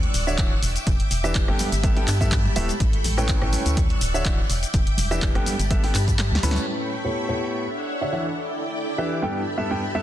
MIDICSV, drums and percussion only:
0, 0, Header, 1, 2, 480
1, 0, Start_track
1, 0, Tempo, 483871
1, 860, Time_signature, 4, 2, 24, 8
1, 9945, End_track
2, 0, Start_track
2, 0, Title_t, "Drums"
2, 30, Note_on_c, 9, 42, 35
2, 130, Note_off_c, 9, 42, 0
2, 141, Note_on_c, 9, 46, 108
2, 147, Note_on_c, 9, 54, 79
2, 147, Note_on_c, 9, 82, 79
2, 240, Note_off_c, 9, 46, 0
2, 246, Note_off_c, 9, 54, 0
2, 247, Note_off_c, 9, 82, 0
2, 273, Note_on_c, 9, 54, 49
2, 277, Note_on_c, 9, 82, 45
2, 372, Note_off_c, 9, 54, 0
2, 376, Note_off_c, 9, 82, 0
2, 380, Note_on_c, 9, 36, 119
2, 380, Note_on_c, 9, 39, 113
2, 381, Note_on_c, 9, 42, 74
2, 387, Note_on_c, 9, 82, 33
2, 479, Note_off_c, 9, 36, 0
2, 480, Note_off_c, 9, 39, 0
2, 480, Note_off_c, 9, 42, 0
2, 486, Note_off_c, 9, 82, 0
2, 621, Note_on_c, 9, 46, 106
2, 627, Note_on_c, 9, 82, 79
2, 628, Note_on_c, 9, 54, 83
2, 720, Note_off_c, 9, 46, 0
2, 726, Note_off_c, 9, 82, 0
2, 728, Note_off_c, 9, 54, 0
2, 750, Note_on_c, 9, 42, 35
2, 754, Note_on_c, 9, 54, 54
2, 757, Note_on_c, 9, 82, 43
2, 849, Note_off_c, 9, 42, 0
2, 853, Note_off_c, 9, 54, 0
2, 856, Note_off_c, 9, 82, 0
2, 860, Note_on_c, 9, 36, 114
2, 861, Note_on_c, 9, 42, 80
2, 867, Note_on_c, 9, 82, 36
2, 959, Note_off_c, 9, 36, 0
2, 960, Note_off_c, 9, 42, 0
2, 967, Note_off_c, 9, 82, 0
2, 990, Note_on_c, 9, 42, 52
2, 1089, Note_off_c, 9, 42, 0
2, 1100, Note_on_c, 9, 46, 99
2, 1107, Note_on_c, 9, 82, 82
2, 1108, Note_on_c, 9, 54, 85
2, 1200, Note_off_c, 9, 46, 0
2, 1206, Note_off_c, 9, 82, 0
2, 1207, Note_off_c, 9, 54, 0
2, 1227, Note_on_c, 9, 54, 53
2, 1230, Note_on_c, 9, 37, 67
2, 1236, Note_on_c, 9, 82, 44
2, 1326, Note_off_c, 9, 54, 0
2, 1329, Note_off_c, 9, 37, 0
2, 1336, Note_off_c, 9, 82, 0
2, 1340, Note_on_c, 9, 36, 117
2, 1340, Note_on_c, 9, 39, 113
2, 1340, Note_on_c, 9, 42, 78
2, 1344, Note_on_c, 9, 54, 38
2, 1347, Note_on_c, 9, 82, 34
2, 1439, Note_off_c, 9, 36, 0
2, 1439, Note_off_c, 9, 39, 0
2, 1440, Note_off_c, 9, 42, 0
2, 1443, Note_off_c, 9, 54, 0
2, 1446, Note_off_c, 9, 82, 0
2, 1470, Note_on_c, 9, 37, 82
2, 1569, Note_off_c, 9, 37, 0
2, 1576, Note_on_c, 9, 54, 88
2, 1580, Note_on_c, 9, 46, 92
2, 1587, Note_on_c, 9, 82, 77
2, 1592, Note_on_c, 9, 63, 68
2, 1676, Note_off_c, 9, 54, 0
2, 1679, Note_off_c, 9, 46, 0
2, 1686, Note_off_c, 9, 82, 0
2, 1691, Note_off_c, 9, 63, 0
2, 1710, Note_on_c, 9, 42, 49
2, 1710, Note_on_c, 9, 54, 53
2, 1717, Note_on_c, 9, 82, 45
2, 1809, Note_off_c, 9, 42, 0
2, 1809, Note_off_c, 9, 54, 0
2, 1816, Note_off_c, 9, 82, 0
2, 1820, Note_on_c, 9, 36, 124
2, 1820, Note_on_c, 9, 42, 79
2, 1822, Note_on_c, 9, 54, 34
2, 1827, Note_on_c, 9, 82, 34
2, 1919, Note_off_c, 9, 36, 0
2, 1919, Note_off_c, 9, 42, 0
2, 1922, Note_off_c, 9, 54, 0
2, 1926, Note_off_c, 9, 82, 0
2, 1950, Note_on_c, 9, 42, 37
2, 2049, Note_off_c, 9, 42, 0
2, 2060, Note_on_c, 9, 39, 62
2, 2060, Note_on_c, 9, 46, 105
2, 2064, Note_on_c, 9, 54, 83
2, 2067, Note_on_c, 9, 82, 89
2, 2159, Note_off_c, 9, 39, 0
2, 2160, Note_off_c, 9, 46, 0
2, 2163, Note_off_c, 9, 54, 0
2, 2166, Note_off_c, 9, 82, 0
2, 2190, Note_on_c, 9, 36, 59
2, 2190, Note_on_c, 9, 54, 53
2, 2196, Note_on_c, 9, 82, 46
2, 2289, Note_off_c, 9, 36, 0
2, 2289, Note_off_c, 9, 54, 0
2, 2296, Note_off_c, 9, 82, 0
2, 2300, Note_on_c, 9, 36, 115
2, 2300, Note_on_c, 9, 39, 114
2, 2300, Note_on_c, 9, 42, 77
2, 2307, Note_on_c, 9, 82, 36
2, 2399, Note_off_c, 9, 36, 0
2, 2399, Note_off_c, 9, 39, 0
2, 2399, Note_off_c, 9, 42, 0
2, 2406, Note_off_c, 9, 82, 0
2, 2434, Note_on_c, 9, 63, 57
2, 2533, Note_off_c, 9, 63, 0
2, 2538, Note_on_c, 9, 54, 83
2, 2540, Note_on_c, 9, 46, 105
2, 2546, Note_on_c, 9, 63, 85
2, 2546, Note_on_c, 9, 82, 86
2, 2638, Note_off_c, 9, 54, 0
2, 2639, Note_off_c, 9, 46, 0
2, 2645, Note_off_c, 9, 63, 0
2, 2645, Note_off_c, 9, 82, 0
2, 2664, Note_on_c, 9, 54, 50
2, 2670, Note_on_c, 9, 42, 34
2, 2676, Note_on_c, 9, 82, 45
2, 2763, Note_off_c, 9, 54, 0
2, 2769, Note_off_c, 9, 42, 0
2, 2776, Note_off_c, 9, 82, 0
2, 2780, Note_on_c, 9, 36, 118
2, 2780, Note_on_c, 9, 42, 84
2, 2786, Note_on_c, 9, 82, 34
2, 2879, Note_off_c, 9, 36, 0
2, 2879, Note_off_c, 9, 42, 0
2, 2886, Note_off_c, 9, 82, 0
2, 2909, Note_on_c, 9, 42, 53
2, 3009, Note_off_c, 9, 42, 0
2, 3020, Note_on_c, 9, 46, 106
2, 3023, Note_on_c, 9, 63, 86
2, 3026, Note_on_c, 9, 82, 83
2, 3027, Note_on_c, 9, 54, 88
2, 3119, Note_off_c, 9, 46, 0
2, 3123, Note_off_c, 9, 63, 0
2, 3125, Note_off_c, 9, 82, 0
2, 3126, Note_off_c, 9, 54, 0
2, 3150, Note_on_c, 9, 37, 65
2, 3153, Note_on_c, 9, 54, 45
2, 3156, Note_on_c, 9, 82, 46
2, 3249, Note_off_c, 9, 37, 0
2, 3252, Note_off_c, 9, 54, 0
2, 3255, Note_off_c, 9, 82, 0
2, 3259, Note_on_c, 9, 39, 114
2, 3260, Note_on_c, 9, 36, 114
2, 3260, Note_on_c, 9, 42, 80
2, 3260, Note_on_c, 9, 54, 35
2, 3266, Note_on_c, 9, 82, 36
2, 3359, Note_off_c, 9, 36, 0
2, 3359, Note_off_c, 9, 39, 0
2, 3359, Note_off_c, 9, 42, 0
2, 3360, Note_off_c, 9, 54, 0
2, 3365, Note_off_c, 9, 82, 0
2, 3389, Note_on_c, 9, 37, 83
2, 3489, Note_off_c, 9, 37, 0
2, 3497, Note_on_c, 9, 54, 93
2, 3498, Note_on_c, 9, 63, 65
2, 3500, Note_on_c, 9, 46, 96
2, 3506, Note_on_c, 9, 82, 77
2, 3596, Note_off_c, 9, 54, 0
2, 3597, Note_off_c, 9, 63, 0
2, 3599, Note_off_c, 9, 46, 0
2, 3606, Note_off_c, 9, 82, 0
2, 3625, Note_on_c, 9, 54, 56
2, 3630, Note_on_c, 9, 42, 54
2, 3636, Note_on_c, 9, 82, 46
2, 3724, Note_off_c, 9, 54, 0
2, 3729, Note_off_c, 9, 42, 0
2, 3734, Note_on_c, 9, 63, 89
2, 3735, Note_off_c, 9, 82, 0
2, 3740, Note_on_c, 9, 36, 113
2, 3740, Note_on_c, 9, 42, 84
2, 3740, Note_on_c, 9, 54, 38
2, 3747, Note_on_c, 9, 82, 37
2, 3834, Note_off_c, 9, 63, 0
2, 3839, Note_off_c, 9, 36, 0
2, 3839, Note_off_c, 9, 54, 0
2, 3840, Note_off_c, 9, 42, 0
2, 3846, Note_off_c, 9, 82, 0
2, 3870, Note_on_c, 9, 42, 38
2, 3970, Note_off_c, 9, 42, 0
2, 3977, Note_on_c, 9, 54, 92
2, 3981, Note_on_c, 9, 46, 106
2, 3987, Note_on_c, 9, 82, 88
2, 4076, Note_off_c, 9, 54, 0
2, 4080, Note_off_c, 9, 46, 0
2, 4086, Note_off_c, 9, 82, 0
2, 4111, Note_on_c, 9, 54, 47
2, 4117, Note_on_c, 9, 82, 46
2, 4211, Note_off_c, 9, 54, 0
2, 4216, Note_off_c, 9, 82, 0
2, 4220, Note_on_c, 9, 36, 109
2, 4220, Note_on_c, 9, 39, 114
2, 4221, Note_on_c, 9, 42, 80
2, 4227, Note_on_c, 9, 82, 36
2, 4319, Note_off_c, 9, 36, 0
2, 4319, Note_off_c, 9, 39, 0
2, 4320, Note_off_c, 9, 42, 0
2, 4326, Note_off_c, 9, 82, 0
2, 4460, Note_on_c, 9, 46, 104
2, 4461, Note_on_c, 9, 54, 83
2, 4467, Note_on_c, 9, 82, 85
2, 4559, Note_off_c, 9, 46, 0
2, 4560, Note_off_c, 9, 54, 0
2, 4566, Note_off_c, 9, 82, 0
2, 4590, Note_on_c, 9, 42, 38
2, 4592, Note_on_c, 9, 54, 51
2, 4597, Note_on_c, 9, 82, 47
2, 4690, Note_off_c, 9, 42, 0
2, 4691, Note_off_c, 9, 54, 0
2, 4696, Note_off_c, 9, 82, 0
2, 4696, Note_on_c, 9, 54, 39
2, 4700, Note_on_c, 9, 36, 115
2, 4700, Note_on_c, 9, 42, 90
2, 4707, Note_on_c, 9, 82, 36
2, 4795, Note_off_c, 9, 54, 0
2, 4799, Note_off_c, 9, 36, 0
2, 4800, Note_off_c, 9, 42, 0
2, 4806, Note_off_c, 9, 82, 0
2, 4830, Note_on_c, 9, 42, 54
2, 4929, Note_off_c, 9, 42, 0
2, 4934, Note_on_c, 9, 63, 83
2, 4940, Note_on_c, 9, 46, 105
2, 4943, Note_on_c, 9, 54, 87
2, 4947, Note_on_c, 9, 82, 84
2, 5034, Note_off_c, 9, 63, 0
2, 5039, Note_off_c, 9, 46, 0
2, 5042, Note_off_c, 9, 54, 0
2, 5046, Note_off_c, 9, 82, 0
2, 5070, Note_on_c, 9, 37, 68
2, 5070, Note_on_c, 9, 54, 54
2, 5076, Note_on_c, 9, 82, 45
2, 5169, Note_off_c, 9, 37, 0
2, 5169, Note_off_c, 9, 54, 0
2, 5176, Note_off_c, 9, 82, 0
2, 5180, Note_on_c, 9, 36, 118
2, 5180, Note_on_c, 9, 39, 123
2, 5180, Note_on_c, 9, 42, 85
2, 5187, Note_on_c, 9, 82, 34
2, 5279, Note_off_c, 9, 36, 0
2, 5279, Note_off_c, 9, 39, 0
2, 5280, Note_off_c, 9, 42, 0
2, 5286, Note_off_c, 9, 82, 0
2, 5310, Note_on_c, 9, 37, 80
2, 5310, Note_on_c, 9, 42, 39
2, 5409, Note_off_c, 9, 37, 0
2, 5409, Note_off_c, 9, 42, 0
2, 5420, Note_on_c, 9, 63, 74
2, 5421, Note_on_c, 9, 46, 90
2, 5423, Note_on_c, 9, 54, 94
2, 5427, Note_on_c, 9, 82, 76
2, 5519, Note_off_c, 9, 63, 0
2, 5520, Note_off_c, 9, 46, 0
2, 5522, Note_off_c, 9, 54, 0
2, 5526, Note_off_c, 9, 82, 0
2, 5550, Note_on_c, 9, 42, 55
2, 5553, Note_on_c, 9, 54, 47
2, 5556, Note_on_c, 9, 82, 46
2, 5649, Note_off_c, 9, 42, 0
2, 5653, Note_off_c, 9, 54, 0
2, 5656, Note_off_c, 9, 82, 0
2, 5659, Note_on_c, 9, 36, 121
2, 5660, Note_on_c, 9, 42, 84
2, 5667, Note_on_c, 9, 82, 36
2, 5759, Note_off_c, 9, 36, 0
2, 5760, Note_off_c, 9, 42, 0
2, 5766, Note_off_c, 9, 82, 0
2, 5790, Note_on_c, 9, 46, 62
2, 5889, Note_off_c, 9, 46, 0
2, 5900, Note_on_c, 9, 39, 66
2, 5900, Note_on_c, 9, 46, 107
2, 5902, Note_on_c, 9, 54, 83
2, 5906, Note_on_c, 9, 82, 86
2, 5999, Note_off_c, 9, 39, 0
2, 5999, Note_off_c, 9, 46, 0
2, 6001, Note_off_c, 9, 54, 0
2, 6006, Note_off_c, 9, 82, 0
2, 6029, Note_on_c, 9, 36, 59
2, 6030, Note_on_c, 9, 42, 39
2, 6033, Note_on_c, 9, 54, 55
2, 6036, Note_on_c, 9, 82, 46
2, 6128, Note_off_c, 9, 36, 0
2, 6129, Note_off_c, 9, 42, 0
2, 6132, Note_off_c, 9, 54, 0
2, 6135, Note_off_c, 9, 82, 0
2, 6138, Note_on_c, 9, 54, 37
2, 6140, Note_on_c, 9, 38, 67
2, 6140, Note_on_c, 9, 39, 119
2, 6140, Note_on_c, 9, 42, 85
2, 6147, Note_on_c, 9, 82, 35
2, 6238, Note_off_c, 9, 54, 0
2, 6239, Note_off_c, 9, 38, 0
2, 6239, Note_off_c, 9, 39, 0
2, 6239, Note_off_c, 9, 42, 0
2, 6246, Note_off_c, 9, 82, 0
2, 6266, Note_on_c, 9, 63, 61
2, 6300, Note_on_c, 9, 38, 88
2, 6365, Note_off_c, 9, 63, 0
2, 6380, Note_on_c, 9, 46, 104
2, 6380, Note_on_c, 9, 63, 94
2, 6386, Note_on_c, 9, 54, 92
2, 6386, Note_on_c, 9, 82, 81
2, 6399, Note_off_c, 9, 38, 0
2, 6460, Note_on_c, 9, 38, 104
2, 6479, Note_off_c, 9, 46, 0
2, 6479, Note_off_c, 9, 63, 0
2, 6485, Note_off_c, 9, 54, 0
2, 6485, Note_off_c, 9, 82, 0
2, 6505, Note_on_c, 9, 54, 53
2, 6510, Note_on_c, 9, 42, 40
2, 6516, Note_on_c, 9, 82, 44
2, 6559, Note_off_c, 9, 38, 0
2, 6604, Note_off_c, 9, 54, 0
2, 6609, Note_off_c, 9, 42, 0
2, 6615, Note_off_c, 9, 82, 0
2, 9945, End_track
0, 0, End_of_file